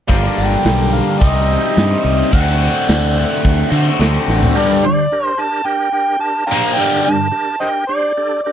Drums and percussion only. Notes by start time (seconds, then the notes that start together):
0.09 kick, closed hi-hat
0.37 closed hi-hat
0.65 snare, closed hi-hat
0.94 closed hi-hat
1.21 kick, closed hi-hat
1.49 closed hi-hat
1.77 snare, closed hi-hat
2.05 closed hi-hat
2.33 kick, closed hi-hat
2.61 closed hi-hat
2.89 snare, closed hi-hat
3.17 closed hi-hat
3.45 kick, closed hi-hat
3.73 closed hi-hat
4.01 snare, closed hi-hat
4.29 snare
4.43 floor tom